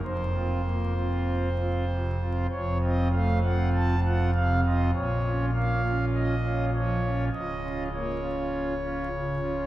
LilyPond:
<<
  \new Staff \with { instrumentName = "Pipe organ" } { \time 4/4 \key bes \minor \tempo 4 = 50 << { c''2 des''16 ees''16 f''16 ges''16 a''16 ges''16 f''16 ees''16 | des''8 f''8 ees''8 des''8 ees''8 des''4. | } \\ { f,16 <c' f'>16 bes16 <c' f'>8 <c' f'>16 c16 <c' f'>16 f,16 <c' f'>16 a16 <c' f'>8 <c' f'>16 c16 <c' f'>16 | bes,16 <des' f'>16 bes16 <des' f'>8 <des' f'>16 f16 <des' f'>16 des,16 <des' f'>16 bes16 <des' f'>8 <des' f'>16 des16 <des' f'>16 | } >> }
  \new Staff \with { instrumentName = "Pipe organ" } { \clef bass \time 4/4 \key bes \minor f,,2 f,,2 | bes,,2 des,,2 | }
>>